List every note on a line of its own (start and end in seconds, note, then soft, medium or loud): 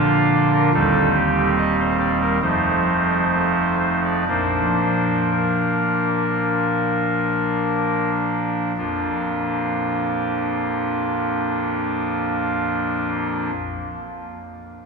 0.00 0.70 A#1 medium
0.00 0.70 A#2 medium
0.00 0.70 D3 medium
0.00 0.70 D4 soft
0.00 0.70 F4 medium
0.00 0.29 F5 loud
0.35 0.51 D5 medium
0.53 0.71 A#4 loud
0.74 2.38 D#1 medium
0.74 2.38 D#2 medium
0.74 2.38 G3 medium
0.74 2.38 C4 soft
0.74 2.38 D#4 medium
0.74 1.09 A4 loud
1.15 1.50 G4 medium
1.57 1.75 D#5 loud
1.79 1.96 C5 medium
2.00 2.17 D5 medium
2.21 2.39 A#4 medium
2.42 4.24 F1 medium
2.42 4.24 F2 medium
2.42 4.24 F3 soft
2.42 4.24 A3 soft
2.42 4.24 D#4 soft
2.42 3.75 C5 medium
3.80 4.00 C5 medium
4.05 4.25 D5 medium
4.28 8.72 A#1 medium
4.28 8.72 A#2 medium
4.28 8.72 F3 soft
4.28 8.72 A#3 soft
4.28 8.72 D4 soft
4.28 5.28 C5 medium
5.31 8.10 A#4 medium
8.77 13.50 A#1 medium
8.77 13.50 F2 soft
8.77 13.50 F3 soft
8.77 13.50 A#3 soft
8.77 13.50 D4 soft
8.77 13.50 F4 soft